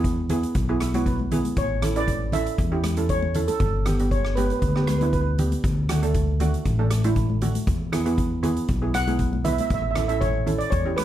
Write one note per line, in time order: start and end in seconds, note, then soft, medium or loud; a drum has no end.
0.00 0.43 E2 medium
0.00 0.15 B3 medium
0.00 0.15 E4 medium
0.00 0.15 G#4 medium
0.00 0.26 B4 medium
0.04 kick medium
0.04 closed hi-hat medium
0.29 0.53 B3 medium
0.29 0.53 E4 medium
0.29 0.53 G#4 medium
0.29 closed hi-hat medium
0.29 low conga medium
0.43 closed hi-hat soft
0.55 1.45 B1 medium
0.55 kick medium
0.55 closed hi-hat medium
0.69 0.83 B3 medium
0.69 0.84 E4 medium
0.69 0.84 G#4 medium
0.80 0.93 E5 medium
0.80 cross-stick medium
0.80 closed hi-hat medium
0.80 high conga medium
0.94 1.17 B3 medium
0.94 1.17 E4 medium
0.94 1.17 F#4 medium
0.94 1.05 C#5 medium
0.94 closed hi-hat soft
0.94 high conga medium
1.06 1.54 B4 medium
1.06 kick medium
1.06 closed hi-hat soft
1.19 high conga medium
1.31 1.57 B3 medium
1.31 1.57 E4 medium
1.31 1.57 G#4 medium
1.31 closed hi-hat medium
1.31 low conga medium
1.45 closed hi-hat medium
1.45 high conga medium
1.57 2.47 A1 medium
1.57 1.98 C#5 medium
1.57 kick loud
1.57 closed hi-hat medium
1.82 1.91 C#4 medium
1.82 1.91 E4 medium
1.82 1.91 A4 medium
1.82 cross-stick medium
1.82 closed hi-hat medium
1.82 low conga medium
1.96 2.19 C#4 medium
1.96 2.19 E4 medium
1.96 2.19 B4 medium
1.96 2.35 D5 medium
1.96 closed hi-hat medium
2.08 kick medium
2.08 closed hi-hat medium
2.32 2.56 C#4 medium
2.32 2.56 E4 medium
2.32 2.56 A4 medium
2.32 3.12 E5 medium
2.32 closed hi-hat medium
2.32 low conga medium
2.46 closed hi-hat medium
2.58 3.48 E2 medium
2.58 kick medium
2.58 closed hi-hat medium
2.72 2.87 C#4 medium
2.72 2.87 E4 medium
2.72 2.87 G4 medium
2.84 cross-stick medium
2.84 closed hi-hat medium
2.84 high conga medium
2.97 3.20 C#4 medium
2.97 3.20 E4 medium
2.97 3.20 A4 medium
2.97 closed hi-hat medium
2.97 high conga medium
3.09 3.50 C#5 medium
3.09 kick medium
3.09 closed hi-hat medium
3.22 high conga medium
3.34 3.61 C#4 medium
3.34 3.61 E4 medium
3.34 3.61 A4 medium
3.34 closed hi-hat medium
3.34 low conga medium
3.48 3.59 A4 medium
3.48 closed hi-hat medium
3.48 high conga medium
3.60 4.50 G1 medium
3.60 4.13 A4 medium
3.60 kick loud
3.60 closed hi-hat medium
3.60 low conga medium
3.86 3.94 B3 medium
3.86 3.94 D4 medium
3.86 3.94 G4 medium
3.86 cross-stick medium
3.86 closed hi-hat medium
3.86 low conga medium
3.99 4.22 B3 medium
3.99 4.22 D4 medium
3.99 4.23 G4 medium
3.99 closed hi-hat medium
4.11 4.38 C#5 medium
4.11 kick medium
4.11 closed hi-hat medium
4.25 cross-stick medium
4.35 4.60 B3 medium
4.35 4.60 D4 medium
4.35 4.60 G4 medium
4.35 4.43 B4 medium
4.35 closed hi-hat medium
4.35 high conga medium
4.44 4.51 B4 medium
4.50 4.58 B4 medium
4.50 closed hi-hat soft
4.59 5.52 D2 medium
4.59 4.66 B4 soft
4.59 kick medium
4.59 closed hi-hat medium
4.68 4.75 B4 soft
4.76 4.90 B3 medium
4.76 4.90 D4 medium
4.76 4.91 G4 medium
4.76 4.82 B4 soft
4.76 cross-stick medium
4.83 4.90 B4 soft
4.87 4.97 B4 soft
4.87 cross-stick medium
4.87 closed hi-hat medium
4.87 high conga medium
4.98 5.24 B3 medium
4.98 5.24 D4 medium
4.98 5.05 B4 medium
4.98 closed hi-hat soft
4.98 high conga medium
5.03 5.25 E4 medium
5.03 5.12 B4 soft
5.13 5.20 B4 medium
5.13 kick medium
5.13 closed hi-hat medium
5.21 5.28 B4 soft
5.38 5.64 B3 medium
5.38 5.64 D4 medium
5.38 5.64 G4 medium
5.38 closed hi-hat medium
5.38 low conga medium
5.52 closed hi-hat medium
5.52 high conga medium
5.64 6.54 D2 medium
5.64 kick loud
5.64 closed hi-hat medium
5.89 5.97 A3 medium
5.89 5.97 D4 medium
5.89 5.97 F#4 medium
5.89 cross-stick medium
5.89 closed hi-hat medium
5.89 low conga medium
6.02 6.25 A3 medium
6.02 6.26 D4 medium
6.02 6.26 A4 medium
6.02 closed hi-hat medium
6.14 kick medium
6.14 closed hi-hat medium
6.40 6.63 A3 medium
6.40 6.63 D4 medium
6.40 6.64 F#4 medium
6.40 closed hi-hat medium
6.40 low conga medium
6.54 closed hi-hat soft
6.65 7.55 A1 medium
6.65 kick medium
6.65 closed hi-hat medium
6.79 6.94 A3 medium
6.79 6.94 D4 medium
6.79 6.94 A4 medium
6.91 cross-stick medium
6.91 closed hi-hat medium
6.91 high conga medium
7.04 7.27 A3 medium
7.04 7.27 D4 medium
7.04 7.27 E4 medium
7.04 closed hi-hat medium
7.04 high conga medium
7.16 kick medium
7.16 closed hi-hat soft
7.30 high conga medium
7.41 7.67 A3 medium
7.41 7.67 D4 medium
7.41 7.67 F#4 medium
7.41 closed hi-hat medium
7.41 low conga medium
7.55 closed hi-hat medium
7.55 high conga medium
7.67 8.57 E2 medium
7.67 kick loud
7.67 closed hi-hat medium
7.92 8.01 B3 medium
7.92 8.01 E4 medium
7.92 8.01 G#4 medium
7.92 cross-stick medium
7.92 closed hi-hat medium
7.92 low conga medium
8.06 8.29 B3 medium
8.06 8.29 E4 medium
8.06 8.29 G#4 medium
8.06 closed hi-hat medium
8.18 kick medium
8.18 closed hi-hat medium
8.43 8.66 B3 medium
8.43 8.66 E4 medium
8.43 8.67 G#4 medium
8.43 closed hi-hat medium
8.43 low conga medium
8.57 closed hi-hat medium
8.68 9.59 B1 medium
8.68 kick medium
8.68 closed hi-hat medium
8.82 8.97 B3 medium
8.82 8.97 E4 medium
8.82 8.97 G#4 medium
8.94 9.42 F#5 medium
8.94 cross-stick medium
8.94 closed hi-hat medium
8.94 high conga medium
9.07 9.31 B3 medium
9.07 9.31 E4 medium
9.07 9.31 G#4 medium
9.07 closed hi-hat medium
9.07 high conga medium
9.19 kick medium
9.19 closed hi-hat soft
9.33 high conga medium
9.45 9.71 B3 medium
9.45 9.71 E4 medium
9.45 9.71 B4 medium
9.45 9.51 E5 medium
9.45 closed hi-hat medium
9.45 low conga medium
9.53 9.59 E5 medium
9.58 9.66 E5 medium
9.58 closed hi-hat medium
9.58 high conga medium
9.67 10.60 A1 medium
9.67 9.73 E5 medium
9.67 kick loud
9.67 closed hi-hat medium
9.74 9.81 E5 medium
9.82 9.90 E5 medium
9.91 9.97 E5 medium
9.96 10.04 C#4 medium
9.96 10.04 E4 medium
9.96 10.04 A4 medium
9.96 10.06 E5 medium
9.96 cross-stick medium
9.96 closed hi-hat medium
9.96 low conga medium
10.08 10.32 C#4 medium
10.08 10.32 E4 medium
10.08 10.33 A4 medium
10.08 10.22 E5 medium
10.08 closed hi-hat medium
10.21 10.57 C#5 medium
10.21 kick medium
10.21 closed hi-hat medium
10.46 10.70 C#4 medium
10.46 10.70 E4 medium
10.46 10.70 A4 medium
10.46 closed hi-hat medium
10.46 low conga medium
10.58 10.72 D5 medium
10.58 closed hi-hat soft
10.70 11.04 E2 medium
10.70 10.82 C#5 medium
10.70 kick medium
10.70 closed hi-hat medium
10.85 11.01 C#4 medium
10.85 11.01 E4 medium
10.85 11.01 G4 medium
10.96 11.04 B4 medium
10.96 cross-stick medium
10.96 closed hi-hat medium
10.96 high conga medium